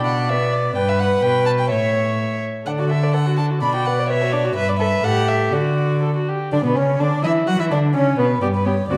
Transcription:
0.00 0.76 B2 soft
0.00 0.32 D4 soft
0.00 0.77 D5 medium
0.05 0.31 F#5 soft
0.29 0.76 B3 soft
0.29 0.54 E5 medium
0.53 0.77 D5 medium
0.75 1.20 G2 medium
0.75 1.20 B4 soft
0.75 1.70 B4 medium
0.75 0.90 G5 medium
0.89 1.01 E5 medium
0.99 1.24 F#5 medium
1.23 1.73 B2 soft
1.23 1.70 B4 soft
1.23 1.45 G5 medium
1.46 1.51 A5 medium
1.59 1.69 G5 medium
1.70 2.47 A2 soft
1.70 2.41 C#5 soft
1.70 2.45 C#5 soft
1.70 2.41 E5 medium
2.66 3.63 D3 soft
2.66 2.81 D4 soft
2.66 3.58 A4 soft
2.66 2.71 F#5 medium
2.79 2.92 F#4 soft
2.79 2.89 D5 soft
2.90 3.05 A4 soft
2.90 3.13 E5 soft
3.03 3.15 D5 soft
3.14 3.28 A4 soft
3.14 3.37 F#5 medium
3.27 3.40 F#4 soft
3.37 3.52 D4 soft
3.37 3.45 A5 medium
3.51 3.62 F#4 soft
3.61 4.55 B2 soft
3.61 3.76 D4 soft
3.61 4.08 D5 soft
3.61 3.73 B5 medium
3.74 3.88 F#4 soft
3.74 3.87 G5 medium
3.85 4.01 B4 soft
3.85 4.08 F#5 soft
3.99 4.12 D5 soft
4.08 4.23 B4 soft
4.08 4.55 C#5 medium
4.08 4.34 E5 medium
4.22 4.35 F#4 soft
4.32 4.46 D4 soft
4.32 4.55 D5 medium
4.44 4.55 F#4 soft
4.56 5.00 G2 medium
4.56 5.05 B4 medium
4.56 4.64 B4 soft
4.56 4.71 E5 medium
4.69 4.79 D5 medium
4.79 4.88 A4 soft
4.79 5.06 E5 medium
5.03 5.55 A2 soft
5.03 5.55 G4 soft
5.03 5.54 A4 medium
5.03 5.30 F#5 medium
5.28 5.54 E5 medium
5.52 6.32 D3 soft
5.52 6.28 F#4 soft
5.52 5.99 F#4 soft
5.52 6.28 D5 soft
6.03 6.15 A4 soft
6.17 6.30 F#4 soft
6.29 6.52 G4 soft
6.52 6.58 D3 medium
6.52 6.64 D4 medium
6.52 6.58 D4 medium
6.52 6.64 D5 medium
6.64 6.77 B2 soft
6.64 6.77 B3 soft
6.64 6.78 B4 soft
6.76 6.99 C#3 soft
6.76 7.01 C#4 soft
6.76 7.01 C#5 medium
7.00 7.08 D3 soft
7.00 7.24 D4 soft
7.00 7.23 D4 medium
7.00 7.23 D5 medium
7.23 7.47 E3 soft
7.23 7.49 E4 medium
7.23 7.31 E4 soft
7.23 7.31 E5 soft
7.47 7.58 F#3 medium
7.47 7.61 F#4 medium
7.47 7.60 F#4 medium
7.47 7.59 F#5 medium
7.59 7.72 E3 soft
7.59 7.70 E4 soft
7.59 7.73 E4 soft
7.59 7.65 E5 medium
7.71 7.97 D3 soft
7.71 7.79 D4 soft
7.71 7.95 D4 soft
7.71 7.79 D5 medium
7.94 8.18 C#3 soft
7.94 8.17 C#4 soft
7.94 8.20 C#4 medium
7.94 8.18 C#5 medium
8.18 8.42 B2 soft
8.18 8.26 B3 soft
8.18 8.41 B3 soft
8.18 8.42 B4 medium
8.42 8.84 G2 soft
8.42 8.50 B3 soft
8.42 8.50 G4 soft
8.42 8.47 D5 medium
8.54 8.66 B4 medium
8.65 8.74 B3 soft
8.65 8.74 G4 soft
8.65 8.88 C#5 medium
8.88 8.97 D2 soft
8.88 8.97 C4 soft
8.88 8.97 F#4 soft
8.88 8.97 D5 medium

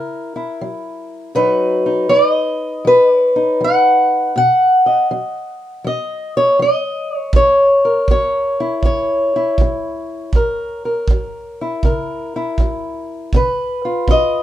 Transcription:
0.00 0.55 C#3 medium
0.00 0.35 E4 soft
0.00 1.31 A#4 soft
0.36 1.32 E4 soft
0.61 1.30 F#3 medium
1.35 2.05 B2 medium
1.35 2.09 F#3 soft
1.35 1.86 D#4 medium
1.35 2.84 B4 loud
1.86 3.35 D#4 soft
2.09 2.79 F#3 medium
2.09 2.29 D5 medium
2.29 3.06 D#5 medium
2.85 3.54 F#3 medium
2.85 4.36 B4 loud
3.06 3.19 D5 medium
3.19 3.59 C#5 medium
3.36 4.32 D#4 soft
3.61 4.30 F#3 medium
3.61 4.36 F#5 loud
4.36 5.05 B2 medium
4.36 5.86 F#5 loud
4.86 5.85 D#5 soft
5.11 5.80 F#3 medium
5.84 6.54 F#3 medium
5.84 6.35 D#5 medium
6.37 6.60 C#5 medium
6.59 7.29 F#3 medium
6.59 7.16 D#5 medium
7.16 7.35 C#5 medium
7.33 8.04 F#2 medium
7.33 8.10 C#5 medium
7.33 kick medium
7.85 10.31 A#4 soft
8.08 8.80 F#3 medium
8.08 8.84 C#5 medium
8.08 kick medium
8.60 9.34 E4 soft
8.83 9.54 C#3 medium
8.83 11.84 C#5 medium
8.83 kick medium
9.36 10.32 E4 soft
9.58 10.30 F#3 medium
9.58 kick medium
10.33 11.04 F#2 medium
10.33 10.84 A#4 medium
10.33 kick medium
10.85 11.84 A#4 soft
11.08 11.79 F#3 medium
11.08 kick medium
11.61 12.35 E4 soft
11.83 12.54 C#3 medium
11.83 13.31 A#4 soft
11.83 kick medium
12.36 13.31 E4 soft
12.58 13.29 F#3 medium
12.58 kick medium
13.33 14.04 C#3 medium
13.33 14.43 B4 medium
13.33 kick medium
13.85 14.43 F4 soft
14.08 14.43 C#4 medium
14.08 14.43 D#5 medium
14.08 kick medium

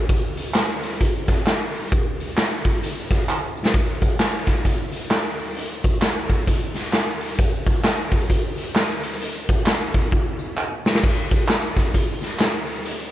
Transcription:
0.09 kick loud
0.09 closed hi-hat medium
0.37 closed hi-hat medium
0.37 tambourine medium
0.54 snare loud
0.54 clap loud
0.54 closed hi-hat medium
0.54 tambourine loud
0.70 closed hi-hat medium
0.83 snare soft
0.83 closed hi-hat medium
1.01 kick medium
1.01 closed hi-hat medium
1.01 tambourine soft
1.28 kick medium
1.28 snare soft
1.28 closed hi-hat medium
1.28 tambourine medium
1.37 closed hi-hat soft
1.46 snare medium
1.46 clap medium
1.46 closed hi-hat medium
1.46 tambourine medium
1.74 open hi-hat medium
1.74 tambourine medium
1.92 kick loud
1.92 closed hi-hat loud
1.92 tambourine soft
2.20 closed hi-hat medium
2.20 tambourine medium
2.37 snare loud
2.37 clap loud
2.37 closed hi-hat medium
2.37 tambourine loud
2.65 kick medium
2.65 closed hi-hat medium
2.65 tambourine soft
2.83 closed hi-hat medium
2.83 tambourine soft
3.11 kick medium
3.11 snare soft
3.11 closed hi-hat medium
3.11 tambourine medium
3.29 clap medium
3.29 tambourine medium
3.57 tambourine medium
3.65 snare medium
3.74 kick loud
3.74 closed hi-hat medium
4.02 kick medium
4.02 closed hi-hat medium
4.02 tambourine medium
4.20 snare loud
4.20 clap medium
4.20 closed hi-hat medium
4.20 tambourine loud
4.47 kick medium
4.47 snare soft
4.47 closed hi-hat medium
4.47 tambourine soft
4.65 kick medium
4.65 closed hi-hat medium
4.65 tambourine soft
4.92 closed hi-hat medium
4.92 tambourine medium
5.11 snare loud
5.11 clap medium
5.11 closed hi-hat medium
5.11 tambourine medium
5.39 open hi-hat medium
5.39 tambourine medium
5.57 closed hi-hat loud
5.84 kick medium
5.84 closed hi-hat medium
5.84 tambourine medium
6.02 snare loud
6.02 clap loud
6.02 closed hi-hat medium
6.02 tambourine loud
6.29 kick medium
6.29 closed hi-hat medium
6.29 tambourine soft
6.47 kick medium
6.47 closed hi-hat loud
6.47 tambourine soft
6.75 snare soft
6.75 closed hi-hat medium
6.75 tambourine medium
6.93 snare medium
6.93 clap medium
6.93 closed hi-hat medium
6.93 tambourine medium
7.21 closed hi-hat medium
7.21 tambourine medium
7.30 closed hi-hat soft
7.37 kick loud
7.37 closed hi-hat loud
7.37 tambourine soft
7.67 kick medium
7.67 closed hi-hat medium
7.67 tambourine medium
7.84 snare loud
7.84 clap loud
7.84 closed hi-hat medium
7.84 tambourine loud
8.12 kick medium
8.12 closed hi-hat medium
8.12 tambourine soft
8.20 closed hi-hat medium
8.30 kick medium
8.30 closed hi-hat medium
8.30 tambourine soft
8.56 closed hi-hat medium
8.56 tambourine medium
8.75 snare loud
8.75 clap medium
8.75 closed hi-hat medium
8.75 tambourine medium
9.03 closed hi-hat medium
9.03 tambourine medium
9.20 closed hi-hat loud
9.20 tambourine soft
9.49 kick loud
9.49 closed hi-hat medium
9.49 tambourine medium
9.66 snare loud
9.66 clap loud
9.66 closed hi-hat medium
9.66 tambourine loud
9.94 kick medium
9.94 closed hi-hat medium
10.12 kick medium
10.12 tambourine soft
10.39 tambourine medium
10.57 clap medium
10.57 tambourine medium
10.85 snare loud
10.85 tambourine medium
10.95 snare medium
11.02 kick loud
11.02 crash medium
11.02 tambourine soft
11.31 kick loud
11.31 closed hi-hat medium
11.31 tambourine medium
11.48 snare loud
11.48 clap loud
11.48 closed hi-hat medium
11.48 tambourine loud
11.77 kick medium
11.77 snare soft
11.77 closed hi-hat medium
11.77 tambourine soft
11.94 kick medium
11.94 closed hi-hat medium
11.94 tambourine soft
12.21 snare soft
12.21 closed hi-hat medium
12.21 tambourine medium
12.39 snare loud
12.39 clap medium
12.39 closed hi-hat medium
12.39 tambourine medium
12.67 open hi-hat medium
12.67 tambourine medium
12.83 closed hi-hat medium
12.83 tambourine soft

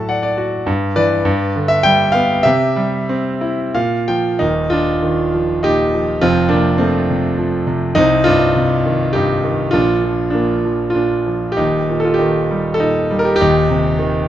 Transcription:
0.00 0.64 A2 medium
0.00 0.35 F#3 medium
0.00 0.36 F#4 medium
0.00 0.65 A4 medium
0.00 0.09 F#5 medium
0.00 0.69 A5 medium
0.09 0.21 D5 medium
0.09 0.23 F#5 medium
0.23 0.64 D5 medium
0.38 0.66 F#4 medium
0.66 1.23 G2 medium
0.96 1.25 E3 medium
0.96 1.81 B4 medium
0.96 1.73 D5 medium
1.25 2.42 G2 medium
1.56 2.43 D3 medium
1.68 1.85 E5 loud
1.83 2.44 G3 medium
1.83 2.15 G5 loud
2.12 2.45 B3 medium
2.12 2.46 F5 medium
2.43 3.71 C3 medium
2.43 3.71 G4 medium
2.43 3.70 E5 loud
2.76 3.72 G3 medium
3.09 3.73 C4 medium
3.41 3.74 E4 medium
3.74 4.38 A#2 medium
3.74 4.06 F5 medium
4.08 4.39 F3 medium
4.08 4.38 G5 medium
4.39 6.19 D#1 medium
4.39 6.19 D#2 medium
4.39 4.69 A#3 medium
4.39 4.72 D#4 medium
4.70 5.63 A#2 soft
4.70 5.30 D4 medium
4.70 5.28 F4 medium
5.03 6.19 D#3 medium
5.34 5.92 F3 soft
5.63 6.21 A#2 soft
5.63 6.18 D#4 medium
5.63 6.24 G4 medium
5.94 6.22 F3 medium
6.21 7.93 F1 medium
6.21 7.93 F2 medium
6.21 6.49 C4 medium
6.21 6.52 F4 loud
6.49 7.09 C3 medium
6.49 6.77 A#3 medium
6.49 6.80 D4 medium
6.78 7.37 F3 medium
6.78 7.64 A3 medium
6.78 7.63 C4 medium
7.10 7.65 C3 medium
7.39 7.95 F3 medium
7.67 7.96 C3 medium
7.95 9.70 C2 medium
7.95 8.25 C4 medium
7.95 8.26 D#4 loud
8.24 9.13 G2 medium
8.24 8.81 D4 medium
8.24 8.80 F4 loud
8.56 9.71 C3 medium
8.85 9.43 D#3 medium
9.13 9.72 G2 medium
9.13 9.71 D#4 medium
9.13 9.75 G4 medium
9.44 9.73 D#3 medium
9.71 11.55 A#1 medium
9.71 10.33 A#2 medium
9.71 10.29 D4 medium
9.71 10.35 F4 medium
10.04 10.64 F3 soft
10.30 10.92 A#3 medium
10.30 10.93 D4 medium
10.35 10.94 A#2 soft
10.65 11.25 F3 soft
10.90 11.58 F4 medium
10.95 11.57 A#2 soft
10.95 11.54 D4 medium
11.27 11.58 F3 soft
11.52 12.04 G4 medium
11.57 13.36 D#1 medium
11.57 13.37 D#2 medium
11.57 12.01 D#4 medium
11.90 12.80 A#2 soft
12.00 12.18 A4 medium
12.05 12.19 F4 medium
12.14 12.80 G4 medium
12.19 13.37 D#3 medium
12.19 12.76 D#4 medium
12.51 13.09 G3 soft
12.74 13.24 A4 medium
12.80 13.39 A#2 soft
12.80 13.22 D#4 medium
13.11 13.40 G3 medium
13.19 13.38 A#4 medium
13.25 13.34 G4 medium
13.36 14.28 G4 loud
13.40 14.28 D#1 medium
13.40 14.28 D#2 medium
13.40 14.28 D#4 medium
13.70 14.28 C3 medium
13.99 14.28 D#3 medium

